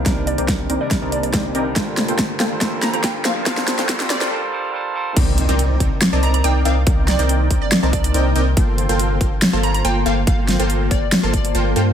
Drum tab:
CC |----------------|----------------|----------------|x---------------|
HH |x-xxx-x-x-xxx-x-|x-xxx-x-x-xxx-x-|x-xxx-x---------|x-xxx-x-x-xxx-x-|
SD |o---o---o---o---|o-o-o-o-o-o-o-o-|oooooooo--------|--------o-------|
BD |o---o---o---o---|o---o---o---o---|o---o-----------|o-----o---------|

CC |----------------|----------------|----------------|
HH |x-xxx-x-x-xxx-x-|x-xxx-x-x-xxx-x-|x-xxx-x-x-xxx-x-|
SD |--o-----o-------|--------o-------|--o-----o-------|
BD |o-----o---o-----|o-----o---------|o-----o---o-----|